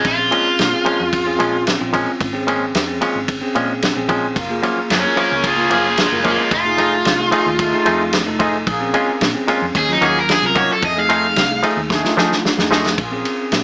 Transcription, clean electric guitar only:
0.31 0.48 A#2 medium
0.31 0.48 F3 medium
0.31 0.49 G#3 medium
0.31 0.49 C#4 medium
0.85 1.02 A#2 medium
0.85 1.02 F3 loud
0.85 1.03 G#3 medium
0.85 1.03 C#4 loud
1.39 1.56 A#2 medium
1.39 1.56 F3 medium
1.39 1.56 G#3 medium
1.39 1.57 C#4 medium
1.93 2.10 A#2 medium
1.93 2.10 F3 medium
1.93 2.10 G#3 loud
1.93 2.11 C#4 loud
2.47 2.64 A#2 medium
2.47 2.64 F3 medium
2.47 2.65 G#3 medium
2.47 2.65 C#4 loud
3.01 3.18 A#2 medium
3.01 3.18 F3 medium
3.01 3.19 G#3 medium
3.01 3.19 C#4 loud
3.55 3.72 A#2 medium
3.55 3.72 F3 medium
3.55 3.72 G#3 loud
3.55 3.73 C#4 medium
4.09 4.26 A#2 medium
4.09 4.26 F3 loud
4.09 4.26 G#3 medium
4.09 4.26 C#4 medium
4.63 4.79 F#2 loud
4.63 4.80 F3 medium
4.63 4.80 A#3 medium
4.63 4.80 C#4 loud
5.16 5.33 F#2 medium
5.16 5.34 F3 medium
5.16 5.34 A#3 medium
5.16 5.34 C#4 medium
5.70 5.87 F#2 medium
5.70 5.87 F3 medium
5.70 5.88 A#3 medium
5.70 5.88 C#4 medium
6.24 6.41 F#2 medium
6.24 6.41 F3 medium
6.24 6.41 A#3 medium
6.24 6.42 C#4 medium
6.78 6.95 F3 medium
6.78 6.95 A3 medium
6.78 6.95 D#4 medium
6.78 6.96 G#4 medium
7.32 7.49 F3 medium
7.32 7.49 A3 medium
7.32 7.49 D#4 medium
7.32 7.49 G#4 loud
7.86 8.02 F3 medium
7.86 8.03 A3 medium
7.86 8.03 D#4 medium
7.86 8.03 G#4 medium
8.39 8.56 F3 medium
8.39 8.57 A3 medium
8.39 8.57 D#4 loud
8.39 8.57 G#4 loud
8.94 9.10 A#2 medium
8.94 9.11 G#3 loud
8.94 9.11 C#4 loud
8.94 9.11 F4 loud
9.48 9.64 A#2 medium
9.48 9.65 G#3 medium
9.48 9.65 C#4 loud
9.48 9.65 F4 loud
10.01 10.18 D#3 medium
10.01 10.19 A#3 medium
10.01 10.19 C#4 medium
10.01 10.19 F#4 medium
10.55 10.72 D#3 medium
10.55 10.72 A#3 medium
10.55 10.73 C#4 medium
10.55 10.73 F#4 medium
11.09 11.26 F3 medium
11.09 11.26 A3 medium
11.09 11.26 D#4 medium
11.09 11.27 G#4 loud
11.63 11.80 F3 medium
11.63 11.80 A3 medium
11.63 11.80 D#4 medium
11.63 11.81 G#4 medium
12.17 12.34 F3 medium
12.17 12.34 A3 loud
12.17 12.34 D#4 medium
12.17 12.34 G#4 loud
12.71 12.87 F3 medium
12.71 12.88 A3 loud
12.71 12.88 D#4 loud
12.71 12.88 G#4 loud

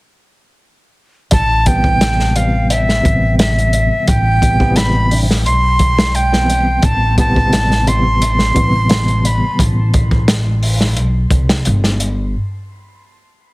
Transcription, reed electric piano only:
1.67 1.82 C3 medium
1.67 1.82 E3 medium
1.67 1.82 G3 medium
1.67 1.83 B3 loud
1.85 2.31 C3 medium
1.85 2.32 E3 medium
1.85 2.32 G3 medium
1.85 2.32 B3 medium
2.36 3.01 C3 medium
2.36 3.01 E3 medium
2.36 3.01 G3 medium
2.36 3.01 B3 medium
3.03 4.38 C3 medium
3.03 4.39 E3 medium
3.03 4.39 G3 medium
3.03 4.39 B3 medium
4.42 4.56 C3 medium
4.42 4.56 E3 medium
4.42 4.56 G3 medium
4.42 4.57 B3 medium
4.59 5.07 C3 medium
4.59 5.07 E3 medium
4.59 5.07 G3 medium
4.59 5.08 B3 loud
5.12 5.23 C3 medium
5.12 5.24 E3 medium
5.12 5.24 G3 medium
5.12 5.24 D4 medium
6.32 7.15 E3 medium
6.32 7.15 G3 medium
6.32 7.15 B3 medium
6.32 7.14 C4 medium
7.18 7.33 C3 medium
7.18 7.34 E3 medium
7.18 7.34 G3 medium
7.18 7.34 B3 loud
7.36 7.83 C3 medium
7.36 7.83 E3 medium
7.36 7.83 G3 medium
7.36 7.83 B3 medium
7.87 8.52 C3 medium
7.87 8.52 E3 medium
7.87 8.52 G3 medium
7.87 8.53 B3 medium
8.54 9.89 C3 medium
8.54 9.90 E3 medium
8.54 9.90 G3 medium
8.54 9.91 B3 medium

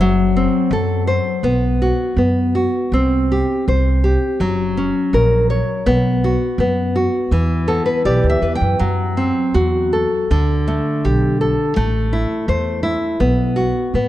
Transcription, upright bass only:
0.00 0.46 F#1 medium
0.71 1.17 F#2 loud
1.43 1.91 B1 medium
2.16 2.66 F#2 medium
2.92 3.41 C2 medium
3.68 4.15 C2 medium
4.40 4.88 F#1 medium
5.13 5.61 A#1 medium
5.86 6.33 B1 medium
6.58 7.06 F#2 medium
7.31 7.80 E2 medium
8.05 8.18 B1 medium
8.23 8.41 D2 medium
8.42 8.59 E2 medium
8.61 8.78 F#2 medium
8.80 9.29 F#2 medium
9.55 10.04 E2 medium
10.31 10.79 D2 loud
11.05 11.52 B1 loud
11.77 12.23 A1 loud
12.48 12.95 E2 loud
13.20 13.68 B1 medium
13.94 14.08 A2 medium

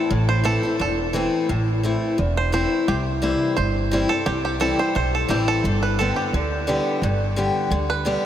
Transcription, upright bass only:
0.10 0.55 A1 medium
0.80 1.25 E1 medium
1.49 1.94 A1 medium
2.19 2.63 E1 medium
2.88 3.33 C2 loud
3.57 4.02 G1 medium
4.26 4.71 C2 medium
4.95 5.24 B1 medium
5.29 5.59 A1 medium
5.64 6.09 G1 medium
6.33 6.78 D2 medium
7.02 7.47 G1 medium
7.70 8.15 D2 medium

